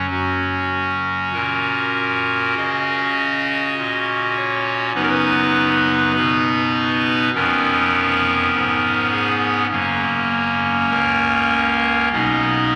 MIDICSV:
0, 0, Header, 1, 2, 480
1, 0, Start_track
1, 0, Key_signature, 6, "major"
1, 0, Tempo, 1224490
1, 40, Time_signature, 4, 2, 24, 8
1, 1480, Tempo, 1185771
1, 4360, Tempo, 1226994
1, 5089, End_track
2, 0, Start_track
2, 0, Title_t, "Pipe organ"
2, 0, Program_c, 0, 19
2, 38, Note_on_c, 0, 42, 60
2, 38, Note_on_c, 0, 66, 48
2, 40, Note_on_c, 0, 30, 57
2, 41, Note_on_c, 0, 61, 44
2, 505, Note_off_c, 0, 30, 0
2, 505, Note_off_c, 0, 42, 0
2, 521, Note_on_c, 0, 46, 54
2, 522, Note_on_c, 0, 70, 76
2, 994, Note_off_c, 0, 46, 0
2, 995, Note_off_c, 0, 70, 0
2, 1007, Note_on_c, 0, 49, 54
2, 1009, Note_on_c, 0, 75, 101
2, 1465, Note_off_c, 0, 49, 0
2, 1478, Note_on_c, 0, 46, 65
2, 1704, Note_off_c, 0, 75, 0
2, 1718, Note_on_c, 0, 73, 78
2, 1923, Note_off_c, 0, 73, 0
2, 1943, Note_off_c, 0, 66, 0
2, 1944, Note_off_c, 0, 61, 0
2, 1945, Note_off_c, 0, 46, 0
2, 1954, Note_on_c, 0, 59, 53
2, 1955, Note_on_c, 0, 42, 77
2, 1955, Note_on_c, 0, 63, 54
2, 1955, Note_on_c, 0, 71, 98
2, 1956, Note_on_c, 0, 30, 75
2, 1981, Note_off_c, 0, 71, 0
2, 1985, Note_on_c, 0, 70, 90
2, 2010, Note_off_c, 0, 70, 0
2, 2014, Note_on_c, 0, 71, 106
2, 2426, Note_off_c, 0, 30, 0
2, 2426, Note_off_c, 0, 42, 0
2, 2429, Note_off_c, 0, 71, 0
2, 2445, Note_on_c, 0, 47, 62
2, 2446, Note_on_c, 0, 71, 98
2, 2903, Note_off_c, 0, 59, 0
2, 2904, Note_off_c, 0, 63, 0
2, 2910, Note_off_c, 0, 47, 0
2, 2910, Note_off_c, 0, 71, 0
2, 2924, Note_on_c, 0, 61, 46
2, 2925, Note_on_c, 0, 41, 71
2, 2926, Note_on_c, 0, 70, 105
2, 2927, Note_on_c, 0, 59, 57
2, 2928, Note_on_c, 0, 29, 70
2, 3390, Note_off_c, 0, 41, 0
2, 3391, Note_off_c, 0, 29, 0
2, 3405, Note_on_c, 0, 44, 77
2, 3627, Note_off_c, 0, 70, 0
2, 3642, Note_on_c, 0, 68, 83
2, 3844, Note_off_c, 0, 68, 0
2, 3864, Note_off_c, 0, 61, 0
2, 3865, Note_off_c, 0, 59, 0
2, 3866, Note_off_c, 0, 44, 0
2, 3882, Note_on_c, 0, 30, 80
2, 3882, Note_on_c, 0, 58, 51
2, 3884, Note_on_c, 0, 42, 77
2, 3884, Note_on_c, 0, 61, 56
2, 4346, Note_off_c, 0, 30, 0
2, 4347, Note_off_c, 0, 42, 0
2, 4360, Note_on_c, 0, 37, 65
2, 4360, Note_on_c, 0, 70, 96
2, 4827, Note_off_c, 0, 37, 0
2, 4827, Note_off_c, 0, 58, 0
2, 4827, Note_off_c, 0, 70, 0
2, 4828, Note_off_c, 0, 61, 0
2, 4842, Note_on_c, 0, 75, 82
2, 4844, Note_on_c, 0, 59, 40
2, 4845, Note_on_c, 0, 35, 63
2, 4845, Note_on_c, 0, 63, 47
2, 4846, Note_on_c, 0, 47, 56
2, 5089, Note_off_c, 0, 35, 0
2, 5089, Note_off_c, 0, 47, 0
2, 5089, Note_off_c, 0, 59, 0
2, 5089, Note_off_c, 0, 63, 0
2, 5089, Note_off_c, 0, 75, 0
2, 5089, End_track
0, 0, End_of_file